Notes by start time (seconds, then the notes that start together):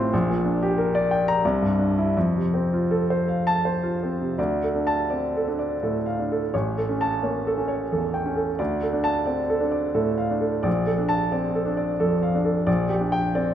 Already playing: A1 A2 C4 F4 C5 F5 C6
0.13 A#1
0.30 A#2
0.45 D4
0.63 G4
0.78 A#4
0.95 D5
1.11 G5
1.28 A#5
1.45 C2
1.62 G2
1.79 D4
1.98 E4
2.17 F2
2.36 C3
2.54 C4
2.73 F4
2.91 A4
3.10 C5
3.28 F5
3.47 A5
3.65 C5
3.83 F4
4.03 C4
4.22 C3
4.38 D2 D5
4.64 A4
4.75 D4
4.87 A5
5.10 C4 D5
5.37 A4
5.48 D4
5.59 D5
5.83 A2 A4
6.06 F5
6.19 D4
6.32 A4
6.54 A1 C#5
6.78 A4
6.89 C#4
7.01 A5
7.23 A#3 C#5
7.47 A4
7.58 C#4
7.68 C#5
7.92 E2 A4
8.14 G5
8.26 C#4
8.36 A4
8.59 D2 D5
8.83 A4
8.93 D4
9.04 A5
9.26 C4 D5
9.50 A4
9.60 D4
9.72 D5
9.95 A2 A4
10.18 F5
10.31 D4
10.41 A4
10.63 A#1 D5
10.86 A4
10.98 D4
11.09 A5
11.32 C4 D5
11.55 A4
11.66 D4
11.77 D5
12.00 F2 A4
12.23 F5
12.35 D4
12.45 A4
12.66 A#1 D5
12.89 G4
13.01 D4
13.12 G5
13.35 C4 D5